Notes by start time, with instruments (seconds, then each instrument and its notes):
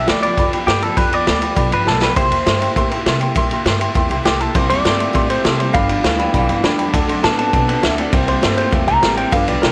0.07 upright bass D2, steel-string acoustic guitar F3 B3 F4 G4, upright piano D5 G5 B5, clean electric guitar D5, snare, ride
0.22 steel-string acoustic guitar F3 B3 F4 G4, upright piano D5 G5 B5, clean electric guitar D5, ride
0.37 upright bass E2, steel-string acoustic guitar G2 D3 F3 B3 F4 G4, upright piano D5 G5 B5, kick, ride
0.52 steel-string acoustic guitar F3 B3 F4 G4, upright piano D5 G5 B5, ride
0.66 upright bass G2, steel-string acoustic guitar F3 B3 F4 G4, clean electric guitar G4, upright piano D5 G5 B5, snare, ride
0.81 steel-string acoustic guitar F3 B3 F4 G4, clean electric guitar A4, upright piano D5 G5 B5, ride
0.96 upright bass F2, steel-string acoustic guitar G2 D3 F3 B3 F4 G4, clean electric guitar B4, upright piano D5 G5 B5, kick, ride
1.11 steel-string acoustic guitar F3 B3 F4 G4, upright piano D5 G5 B5, clean electric guitar D5, ride
1.26 upright bass D2, steel-string acoustic guitar F3 B3 F4 G4, upright piano D5 B5, snare, ride
1.41 steel-string acoustic guitar F3 B3 F4 G4, upright piano D5 G5 B5, ride
1.55 upright bass B1, steel-string acoustic guitar G2 D3 F3 B3 F4 G4, upright piano D5 G5 B5, kick, ride
1.70 upright bass G1, steel-string acoustic guitar F3 B3 F4 G4, clean electric guitar B4, upright piano D5 B5, ride
1.85 upright bass B1, steel-string acoustic guitar F3 B3 F4 G4, clean electric guitar A4, upright piano D5 G5 B5, snare
2.01 steel-string acoustic guitar F3 B3 F4 G4, clean electric guitar B4, upright piano D5 G5 B5, snare
2.16 upright bass C2, steel-string acoustic guitar C3 G3 A#3 E4 G4, clean electric guitar C5, upright piano E5 G5 C6, kick, ride
2.30 upright bass E2, steel-string acoustic guitar A#3 E4 G4, upright piano E5 G5 C6, ride
2.45 upright bass G2, steel-string acoustic guitar G3 A#3 E4 G4, upright piano E5 G5 C6, snare, ride
2.60 steel-string acoustic guitar A#3 E4 G4, upright piano E5 G5 C6, ride
2.76 upright bass A2, steel-string acoustic guitar C3 G3 A#3 E4 G4, upright piano E5 G5 C6, kick, ride
2.91 steel-string acoustic guitar A#3 E4 G4, upright piano E5 G5 C6, ride
3.06 upright bass C3, steel-string acoustic guitar G3 A#3 E4 G4, upright piano E5 G5 C6, snare, ride
3.20 steel-string acoustic guitar A#3 E4 G4, upright piano E5 G5 C6, ride
3.35 upright bass A#2, steel-string acoustic guitar C3 G3 A#3 E4 G4, upright piano E5 G5 C6, kick, ride
3.50 steel-string acoustic guitar A#3 E4 G4, upright piano E5 G5 C6, ride
3.65 upright bass G2, steel-string acoustic guitar G3 A#3 E4 G4, upright piano E5 G5 C6, snare, ride
3.80 steel-string acoustic guitar A#3 E4 G4, upright piano E5 G5 C6, ride
3.94 upright bass E2, steel-string acoustic guitar C3 G3 A#3 E4 G4, upright piano E5 G5 C6, kick, ride
4.09 upright bass C2, steel-string acoustic guitar A#3 E4 G4, upright piano E5 G5 C6, ride
4.23 upright bass C2, steel-string acoustic guitar G3 A#3 E4 G4, clean electric guitar G4, upright piano E5 G5 C6, snare, ride
4.39 steel-string acoustic guitar A#3 E4 G4, clean electric guitar A4, upright piano E5 G5 C6, ride
4.54 upright bass C2, steel-string acoustic guitar C3 G3 A#3 E4 G4, clean electric guitar C3 G3 C5, upright piano E5 G5 C6, kick, ride
4.68 upright bass E2, clean electric guitar C3 G3 D5, steel-string acoustic guitar A#3 E4 G4, upright piano E5 G5 C6, ride
4.83 upright bass G2, clean electric guitar C3 A3, steel-string acoustic guitar G3 A#3 E4 G4, upright piano E5 G5 C6, snare, ride
4.98 clean electric guitar C3 A3, steel-string acoustic guitar A#3 E4 G4, upright piano E5 G5 C6, ride
5.13 upright bass A2, steel-string acoustic guitar C3 G3 A#3 E4 G4, clean electric guitar C3 A3, upright piano E5 G5 C6, kick, ride
5.28 clean electric guitar C3 A3 C5, steel-string acoustic guitar A#3 E4 G4, upright piano E5 C6, ride
5.43 clean electric guitar C3 G3 A4, upright bass C3, steel-string acoustic guitar G3 A#3 E4 G4, upright piano E5 G5 C6, snare, ride
5.58 clean electric guitar C3 G3 C5, steel-string acoustic guitar A#3 E4 G4, upright piano E5 G5 C6, ride
5.73 upright bass G1, steel-string acoustic guitar G2 D3 F3 B3 D4 G4, clean electric guitar G2 D3 F5, upright piano D5 G5 B5, kick, ride
5.88 clean electric guitar G2 D3, steel-string acoustic guitar B3 D4 G4, upright piano D5, ride
5.92 steel-string acoustic guitar F3
6.02 upright bass D2, clean electric guitar G2 E3, steel-string acoustic guitar F3 B3 D4 G4, upright piano D5 G5 B5, snare, ride
6.17 clean electric guitar G2 E3, steel-string acoustic guitar F3 B3 D4 G4, upright piano D5 G5 B5, ride
6.33 upright bass B1, steel-string acoustic guitar G2 D3 F3 B3 D4 G4, clean electric guitar G2 E3, upright piano D5 G5 B5, kick, ride
6.48 upright bass G1, clean electric guitar G2 E3, steel-string acoustic guitar F3 B3 D4 G4, upright piano D5 F5 G5 B5, ride
6.63 upright bass E2, clean electric guitar G2 D3, steel-string acoustic guitar F3 B3 D4, upright piano D5 G5 B5, snare, ride
6.67 steel-string acoustic guitar G4
6.78 clean electric guitar G2 D3, steel-string acoustic guitar F3 B3 D4 G4, upright piano D5 G5 A5 B5, ride
6.92 upright bass D2, steel-string acoustic guitar D3 F#3 C4 D4 A4, clean electric guitar D3 A3, upright piano D5 F#5 A5, kick, ride
7.08 upright bass F#2, clean electric guitar D3 A3, steel-string acoustic guitar C4 D4 A4, upright piano D5 F#5 C6, ride
7.23 upright bass A2, clean electric guitar D3 B3 A5, steel-string acoustic guitar F#3 C4 A4, upright piano D5, snare, ride
7.38 clean electric guitar D3 B3 A5, steel-string acoustic guitar C4 D4 A4, upright piano D5 F#5 A5, ride
7.52 upright bass B2, clean electric guitar D3 B3, steel-string acoustic guitar D3 F#3 C4 D4 A4, upright piano D5 F#5 A5, kick, ride
7.67 clean electric guitar D3 B3, steel-string acoustic guitar C4 D4 A4, upright piano D5 F#5, ride
7.82 upright bass D2, clean electric guitar D3 A3 E5, steel-string acoustic guitar F#3 C4 D4 A4, upright piano D5 F#5 A5, snare, ride
7.97 clean electric guitar D3 A3 D5, steel-string acoustic guitar C4 D4 A4, upright piano D5 F#5 A5, ride
8.12 upright bass C2, steel-string acoustic guitar C3 G3 A#3 E4 G4, clean electric guitar C3 G3 C5, upright piano C5 E5 G5, kick, ride
8.26 clean electric guitar C3 G3 C5, steel-string acoustic guitar A#3 E4 G4, upright piano C5 E5, ride
8.41 upright bass G2, clean electric guitar C3 A3, steel-string acoustic guitar G3 A#3 E4 G4, upright piano C5 E5 G5, snare, ride
8.55 clean electric guitar C3 A3 C5, steel-string acoustic guitar A#3 E4 G4, upright piano C5 E5 G5, ride
8.71 upright bass E2, steel-string acoustic guitar C3 G3 A#3 E4 G4, clean electric guitar C3 A3, upright piano C5 E5 G5, kick, ride
8.86 upright bass C2, clean electric guitar C3 A3 A#5, steel-string acoustic guitar A#3 E4 G4, upright piano C5 E5 G5, ride
9.01 upright bass A1, clean electric guitar C3 G3, steel-string acoustic guitar G3 A#3 E4 G4, upright piano C5 E5 G5, snare, ride
9.16 clean electric guitar C3 G3 G5, steel-string acoustic guitar A#3 E4 G4, upright piano C5 E5, ride
9.31 upright bass G1, steel-string acoustic guitar G2 D3 F3 B3 F4 G4, clean electric guitar G2 D3 F5, upright piano B4 D5 G5, kick, ride
9.46 upright bass B1, clean electric guitar G2 D3 D5, steel-string acoustic guitar F3 B3 F4 G4, upright piano B4 D5 G5, ride
9.61 upright bass B1, clean electric guitar G2 E3 A#4, steel-string acoustic guitar F3 B3 F4 G4, upright piano B4 D5 G5, snare, ride